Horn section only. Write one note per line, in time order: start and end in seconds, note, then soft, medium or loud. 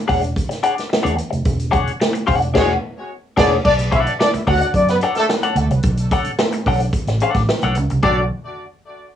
2.55 2.70 G#3 loud
2.55 2.69 C#4 medium
2.55 2.70 F#4 loud
2.55 2.69 C#5 loud
3.37 3.51 B3 loud
3.37 3.51 D4 loud
3.37 3.51 G#4 loud
3.37 3.51 D5 loud
3.65 3.73 D4 loud
3.65 3.73 D5 loud
3.93 4.01 E4 medium
3.93 4.01 E5 medium
4.20 4.28 D4 medium
4.20 4.28 D5 loud
4.47 4.69 F#4 loud
4.47 4.69 F#5 loud
4.75 4.86 D4 medium
4.75 4.86 D5 medium
4.90 4.98 B3 medium
4.90 4.98 B4 medium
5.17 5.25 A3 medium
5.17 5.25 A4 loud
8.03 8.22 A3 medium
8.03 8.22 D4 medium
8.03 8.22 F#4 loud
8.03 8.22 D5 loud